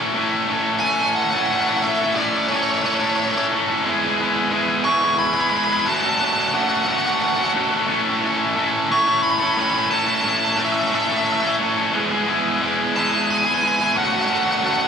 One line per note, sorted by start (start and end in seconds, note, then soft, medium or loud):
0.00 0.14 A3 medium
0.00 0.16 C#4 medium
0.00 0.17 E4 medium
0.00 0.17 A4 medium
0.14 0.48 A3 medium
0.14 0.49 C#4 medium
0.14 0.50 E4 medium
0.14 0.51 A4 medium
0.48 0.80 A3 medium
0.48 0.82 C#4 medium
0.48 0.84 E4 loud
0.48 0.83 A4 medium
0.80 1.32 A3 medium
0.80 1.02 C#4 medium
0.80 1.15 G#5 loud
0.84 1.01 E4 medium
0.84 0.98 A4 medium
0.99 1.37 C#4 medium
0.99 1.36 E4 medium
0.99 1.33 A4 medium
1.15 1.23 F#5 loud
1.23 1.31 F#5 medium
1.31 1.53 A4 medium
1.31 1.38 F#5 loud
1.36 1.50 C#4 medium
1.36 1.52 E4 medium
1.36 1.46 F#5 medium
1.46 1.53 F#5 loud
1.50 1.81 A3 medium
1.50 1.69 C#4 medium
1.50 1.68 E4 medium
1.50 1.65 A4 medium
1.50 1.60 F#5 medium
1.61 1.68 F#5 loud
1.67 1.83 C#4 medium
1.67 1.85 E4 medium
1.67 1.86 A4 medium
1.67 1.76 F#5 medium
1.77 1.85 F#5 medium
1.82 2.15 A3 loud
1.82 2.03 C#4 loud
1.82 2.02 E4 loud
1.82 2.16 E5 medium
1.87 1.99 A4 loud
2.01 2.16 C#4 medium
2.01 2.18 E4 medium
2.01 2.18 A4 medium
2.16 2.48 A3 medium
2.16 2.49 C#4 medium
2.16 2.52 E4 medium
2.16 2.52 A4 medium
2.16 2.48 D5 medium
2.48 2.82 A3 medium
2.48 2.83 C#4 loud
2.48 2.85 E4 medium
2.48 2.56 C#5 medium
2.53 2.85 A4 loud
2.53 2.62 C#5 medium
2.63 2.70 C#5 medium
2.71 2.78 C#5 medium
2.79 2.86 C#5 medium
2.83 3.34 A3 medium
2.83 3.02 C#4 medium
2.83 3.00 E4 medium
2.83 2.98 A4 loud
2.83 2.93 C#5 medium
2.94 3.01 C#5 medium
2.99 3.33 E4 medium
2.99 3.32 A4 medium
2.99 3.09 C#5 medium
3.04 3.35 C#4 medium
3.09 3.16 C#5 medium
3.16 3.24 C#5 medium
3.25 3.31 C#5 medium
3.31 3.52 E4 medium
3.31 3.53 A4 medium
3.31 3.37 C#5 medium
3.36 3.51 C#4 medium
3.36 3.45 C#5 medium
3.51 3.83 A3 medium
3.51 3.70 C#4 medium
3.51 3.69 E4 medium
3.51 3.67 A4 medium
3.68 3.85 C#4 medium
3.68 3.84 E4 medium
3.68 3.83 A4 medium
3.84 4.17 G#3 loud
3.84 4.04 B3 loud
3.84 4.03 E4 loud
3.84 4.01 G#4 loud
4.02 4.18 B3 medium
4.02 4.20 E4 medium
4.02 4.21 G#4 medium
4.19 4.49 G#3 medium
4.19 4.51 B3 medium
4.19 4.52 E4 loud
4.19 4.53 G#4 medium
4.51 4.84 G#3 medium
4.51 4.85 B3 loud
4.51 4.87 E4 loud
4.51 4.87 G#4 loud
4.85 5.36 G#3 medium
4.85 5.03 B3 medium
4.85 5.02 E4 medium
4.85 5.01 G#4 medium
4.85 5.18 C#6 loud
5.02 5.36 B3 medium
5.02 5.35 E4 medium
5.02 5.33 G#4 medium
5.19 5.26 B5 loud
5.27 5.33 B5 medium
5.34 5.51 B3 medium
5.34 5.53 E4 medium
5.34 5.54 G#4 medium
5.34 5.40 B5 loud
5.41 5.49 B5 medium
5.50 5.84 G#3 medium
5.50 5.70 B3 medium
5.50 5.57 B5 loud
5.54 5.69 E4 medium
5.54 5.66 G#4 medium
5.54 5.64 B5 medium
5.64 5.84 G#4 medium
5.64 5.72 B5 loud
5.70 5.85 B3 medium
5.70 5.85 E4 medium
5.70 5.80 B5 medium
5.80 5.88 B5 medium
5.85 6.19 A3 medium
5.85 6.05 C#4 loud
5.85 6.03 F#4 loud
5.85 6.02 A4 loud
5.85 5.94 A5 medium
5.94 6.00 A5 medium
6.01 6.20 F#4 medium
6.01 6.22 A4 medium
6.01 6.08 A5 medium
6.06 6.20 C#4 medium
6.06 6.17 A5 medium
6.18 6.52 A3 medium
6.18 6.53 C#4 loud
6.18 6.54 F#4 medium
6.18 6.24 A5 medium
6.23 6.56 A4 medium
6.23 6.32 A5 medium
6.33 6.40 A5 medium
6.40 6.47 A5 medium
6.48 6.54 A5 medium
6.53 6.86 A3 loud
6.53 6.87 C#4 medium
6.53 6.87 F#4 loud
6.53 6.89 A4 loud
6.53 6.61 F#5 medium
6.61 6.68 F#5 medium
6.69 6.76 F#5 medium
6.77 6.84 F#5 medium
6.84 7.53 A3 medium
6.84 7.06 C#4 medium
6.84 7.05 F#4 medium
6.84 6.91 F#5 medium
6.89 7.03 A4 medium
6.89 6.98 F#5 medium
6.98 7.06 F#5 medium
7.04 7.39 C#4 medium
7.04 7.37 F#4 medium
7.04 7.36 A4 medium
7.04 7.13 F#5 medium
7.14 7.21 F#5 medium
7.22 7.28 F#5 medium
7.29 7.36 F#5 medium
7.36 7.55 C#4 medium
7.36 7.55 F#4 medium
7.36 7.57 A4 medium
7.36 7.43 F#5 medium
7.44 7.52 F#5 medium
7.54 7.86 A3 medium
7.54 7.74 C#4 medium
7.54 7.71 F#4 medium
7.54 7.70 A4 medium
7.70 7.88 C#4 medium
7.70 7.87 F#4 medium
7.70 7.90 A4 medium
7.87 8.21 A3 loud
7.87 8.08 C#4 loud
7.87 8.07 E4 loud
7.87 8.05 A4 loud
8.05 8.23 C#4 medium
8.05 8.23 E4 medium
8.05 8.25 A4 medium
8.22 8.55 A3 medium
8.22 8.57 C#4 medium
8.22 8.58 E4 medium
8.22 8.59 A4 medium
8.56 8.89 A3 medium
8.56 8.90 C#4 loud
8.56 8.91 E4 medium
8.56 8.92 A4 loud
8.90 9.40 A3 medium
8.90 9.09 C#4 medium
8.90 9.08 E4 medium
8.90 9.05 A4 medium
8.90 9.22 C#6 loud
9.06 9.42 C#4 medium
9.06 9.41 E4 medium
9.06 9.39 A4 medium
9.23 9.30 B5 loud
9.31 9.38 B5 medium
9.39 9.58 E4 medium
9.39 9.58 A4 medium
9.39 9.47 B5 loud
9.43 9.56 C#4 medium
9.47 9.54 B5 medium
9.54 9.88 A3 medium
9.54 9.74 C#4 medium
9.54 9.61 B5 loud
9.59 9.74 E4 medium
9.59 9.71 A4 medium
9.59 9.70 B5 medium
9.70 9.91 E4 medium
9.70 9.91 A4 medium
9.70 9.78 B5 loud
9.76 9.89 C#4 medium
9.76 9.87 B5 medium
9.89 10.22 A3 loud
9.89 10.08 C#4 loud
9.89 10.07 E4 loud
9.89 10.04 A4 loud
9.89 9.98 A5 medium
9.99 10.06 A5 medium
10.06 10.23 C#4 medium
10.06 10.25 E4 medium
10.06 10.25 A4 medium
10.06 10.14 A5 medium
10.15 10.20 A5 medium
10.21 10.55 A3 medium
10.21 10.56 C#4 medium
10.21 10.29 A5 medium
10.26 10.58 E4 medium
10.26 10.58 A4 medium
10.26 10.37 A5 medium
10.37 10.44 A5 medium
10.45 10.52 A5 medium
10.53 10.90 A3 medium
10.53 10.60 A5 medium
10.58 10.92 C#4 loud
10.58 10.93 E4 loud
10.58 10.94 A4 loud
10.58 10.65 E5 medium
10.65 10.72 E5 medium
10.73 10.80 E5 medium
10.80 10.87 E5 medium
10.87 10.95 E5 medium
10.91 11.42 A3 medium
10.91 11.10 C#4 medium
10.91 11.09 E4 medium
10.91 11.07 A4 medium
10.91 11.02 E5 medium
11.02 11.10 E5 medium
11.08 11.44 C#4 medium
11.08 11.42 E4 medium
11.08 11.41 A4 medium
11.08 11.17 E5 medium
11.18 11.25 E5 medium
11.25 11.32 E5 medium
11.33 11.40 E5 medium
11.40 11.60 E4 medium
11.40 11.61 A4 medium
11.40 11.47 E5 medium
11.45 11.59 C#4 medium
11.45 11.55 E5 medium
11.59 11.91 A3 medium
11.59 11.78 C#4 medium
11.59 11.77 E4 medium
11.59 11.75 A4 medium
11.76 11.93 C#4 medium
11.76 11.92 E4 medium
11.76 11.91 A4 medium
11.93 12.26 G#3 loud
11.93 12.12 B3 loud
11.93 12.10 E4 loud
11.93 12.09 G#4 loud
12.10 12.27 B3 medium
12.10 12.28 E4 medium
12.10 12.29 G#4 medium
12.27 12.60 G#3 medium
12.27 12.60 B3 medium
12.27 12.62 E4 medium
12.27 12.63 G#4 medium
12.61 12.93 G#3 loud
12.61 12.94 B3 loud
12.61 12.96 E4 loud
12.61 12.96 G#4 loud
12.94 13.45 G#3 medium
12.94 13.14 B3 medium
12.94 13.12 E4 medium
12.94 13.11 G#4 medium
12.94 13.30 A5 loud
13.12 13.48 B3 medium
13.12 13.45 E4 medium
13.12 13.44 G#4 medium
13.30 13.37 G#5 loud
13.38 13.45 G#5 medium
13.45 13.62 B3 medium
13.45 13.63 E4 medium
13.45 13.64 G#4 medium
13.45 13.53 G#5 loud
13.54 13.61 G#5 loud
13.61 13.94 G#3 medium
13.61 13.81 B3 medium
13.61 13.79 E4 medium
13.61 13.77 G#4 medium
13.61 13.67 G#5 loud
13.67 13.75 G#5 loud
13.76 13.93 G#4 medium
13.76 13.83 G#5 loud
13.80 13.95 B3 medium
13.80 13.94 E4 medium
13.80 13.91 G#5 medium
13.92 14.27 A3 loud
13.92 14.14 C#4 loud
13.92 13.97 G#5 loud
13.97 14.13 F#4 loud
13.97 14.11 A4 loud
13.97 14.04 F#5 medium
14.05 14.12 F#5 medium
14.12 14.29 C#4 medium
14.12 14.30 F#4 medium
14.12 14.31 A4 medium
14.12 14.20 F#5 medium
14.21 14.27 F#5 medium
14.27 14.61 A3 medium
14.27 14.62 C#4 medium
14.27 14.63 F#4 medium
14.27 14.35 F#5 medium
14.32 14.64 A4 medium
14.32 14.43 F#5 medium
14.44 14.51 F#5 medium
14.52 14.58 F#5 medium
14.59 14.88 A3 loud
14.59 14.66 F#5 medium
14.63 14.88 C#4 medium
14.63 14.88 F#4 loud
14.63 14.88 A4 loud
14.63 14.73 F#5 medium
14.74 14.81 F#5 medium
14.82 14.88 F#5 medium